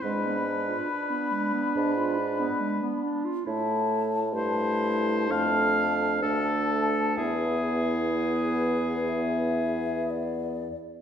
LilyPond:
<<
  \new Staff \with { instrumentName = "Flute" } { \time 4/4 \key e \phrygian \tempo 4 = 65 b''1 | a''4 a''4 a''4 a''4 | e''4 b'4 e''4 d''4 | }
  \new Staff \with { instrumentName = "Oboe" } { \time 4/4 \key e \phrygian b'2.~ b'8 r8 | r4 c''4 f''4 a'4 | gis'2. r4 | }
  \new Staff \with { instrumentName = "Clarinet" } { \time 4/4 \key e \phrygian gis16 b16 d'16 eis'16 d'16 b16 gis16 b16 d'16 eis'16 d'16 b16 gis16 b16 d'16 eis'16 | e'4 e'4 d'4 d'4 | e'2.~ e'8. r16 | }
  \new Staff \with { instrumentName = "French horn" } { \time 4/4 \key e \phrygian d'1 | a4 a4 a4 a4 | b2.~ b8 r8 | }
  \new Staff \with { instrumentName = "Bassoon" } { \clef bass \time 4/4 \key e \phrygian gis,4 r4 gis,4 r4 | a,4 g,4 f,4 d,4 | e,2.~ e,8 r8 | }
>>